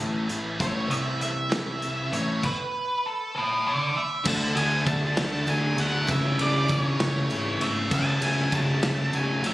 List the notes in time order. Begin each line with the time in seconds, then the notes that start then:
Already playing: E3 A3
0.00 A1 A2 C#4 E4
0.28 A1 A2 E3 A3 C#4 E4, closed hi-hat
0.58 A1 A2 E3 A3 C#4 E4 C#5, kick, closed hi-hat
0.89 C2 C3 E3 A3 C#4 E4 E5, closed hi-hat
1.21 E5, closed hi-hat
1.50 E3 A3 C#4 E4, snare, closed hi-hat
1.81 E3 A3 C#4 E4, closed hi-hat
2.12 A1 A2 E3 A3 C#4 E4 C#5, closed hi-hat
2.43 B4, kick, crash
3.06 A4
3.36 A4 C#5
3.68 D5
3.97 E5
4.24 D2 D3 A3 D4 F#4 A5, kick, crash, tambourine
4.54 D2 A3 D4 F#4 G#5, ride
4.72 tambourine
4.86 D2 D3 A3 D4 F#4 A5, kick, ride, tambourine
5.02 tambourine
5.16 D2 A3 D4 F#4, snare, ride
5.47 D2 D3 F#3 A3 D4 F#4 G#5, ride, tambourine
5.76 D2 A3 D4 F#4, ride
5.80 F#5
6.07 C#2 C#3 E3 A3 C#4 E4, kick, ride, tambourine
6.11 E5
6.38 C#2 A3 C#4 E4 D5, ride
6.53 tambourine
6.68 C#2 E3 A3 C#4 E4, kick, ride, tambourine
6.72 C#5
7.00 C#2 A3 C#4 E4 C#5, snare, ride
7.30 G#1 E3 A3 C#4 E4, ride, tambourine
7.60 G#1 A3 C#4 E4 E5, ride
7.90 C#2 C#3 F#3 A3 C#4 F#4, kick, crash, tambourine
7.94 A5
8.21 C#2 A3 C#4 F#4 G#5, ride
8.37 tambourine
8.52 C#2 F#3 A3 C#4 F#4 A5, kick, ride, tambourine
8.81 C#2 A3 C#4 F#4, snare, ride
9.11 C#2 F#3 A3 C#4 F#4 G#5, ride, tambourine
9.42 A#1 A3 C#4 F#4, ride
9.46 E5